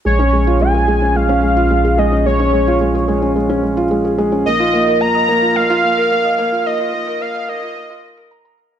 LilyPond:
<<
  \new Staff \with { instrumentName = "Soft synth lead" } { \time 4/4 \key bes \minor \tempo 4 = 109 des''4 aes''4 f''4. ees''8 | des''2 r2 | ees''4 bes''4 f''2 | ees''4 f''8 ees''4. r4 | }
  \new Staff \with { instrumentName = "Felt piano" } { \time 4/4 \key bes \minor aes16 des'16 aes16 f'16 aes16 aes'16 aes16 des'16 aes16 des'16 aes16 f'16 aes16 aes'16 aes16 des'16 | aes16 des'16 aes16 f'16 aes16 aes'16 aes16 des'16 aes16 des'16 aes16 f'16 aes16 aes'16 aes16 des'16 | bes16 f'16 bes16 bes'16 bes16 ees''16 bes16 f'16 bes16 f'16 bes16 bes'16 bes16 ees''16 bes16 f'16 | bes16 f'16 bes16 bes'16 bes16 ees''16 bes16 f'16 bes16 f'16 bes'16 bes'16 bes''16 bes''16 bes'16 bes16 | }
  \new Staff \with { instrumentName = "Sub bass" } { \clef bass \time 4/4 \key bes \minor bes,,1~ | bes,,1 | bes,,1~ | bes,,1 | }
>>